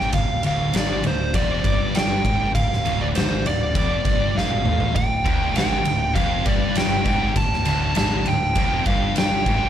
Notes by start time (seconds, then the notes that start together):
Already playing: G#1 G#2
0.01 snare
0.12 D1 D2 F5, kick, ride
0.43 D1 D2 F5, ride
0.73 G#1 G#2 D5, snare, ride
1.04 D1 D2 C5, ride
1.34 F1 F2 D5, kick, ride
1.64 G1 G2, kick, ride
1.95 G5, snare, ride
2.24 G#1 G#2, kick, ride
2.54 D1 D2 F5, kick, ride
2.73 snare
2.85 D1 D2, ride
3.01 D5
3.15 G#1 G#2 C5, snare, ride
3.45 D1 D2 D5, ride
3.74 F1 F2, kick, ride
4.03 G1 G2, kick, ride
4.35 G#1 G#2 F5, snare
4.50 high tom
4.64 A1 A2, mid tom
4.80 floor tom
4.95 D1 D2 G5, kick, ride
5.25 D1 D2, kick, ride
5.55 G#1 G#2 G5, snare, ride
5.85 D1 D2, ride
6.14 F1 F2 F5, kick, ride
6.46 G1 G2 D5, kick, ride
6.75 G5, snare, ride
7.05 G#1 G#2, kick, ride
7.36 D1 D2 A5, kick, ride
7.53 snare
7.65 D1 D2, ride
7.95 G#1 G#2 A5, snare, ride
8.26 D1 D2 G5, ride
8.55 F1 F2, kick, ride
8.86 G1 G2 F5, kick, ride
9.16 G5, snare, ride
9.45 G#1 G#2, kick, ride